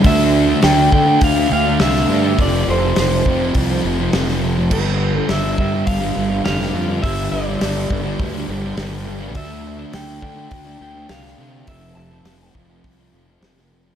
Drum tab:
CC |----------------|----------------|x---------------|----------------|
HH |o---o---o---o---|o---o---o---o---|----o---o---o---|o---o---o---o---|
SD |----o-------oo--|----o-------oo--|----o-------oo--|----o-------o---|
BD |o-----o-o-------|o-----o-o-------|o-----o-o-------|o-----o-o-------|

CC |----------------|----------------|
HH |o---o---o---o---|o---o---o---o---|
SD |----o-------oo--|----o-------oo--|
BD |o-----o-o-------|o-----o-o-------|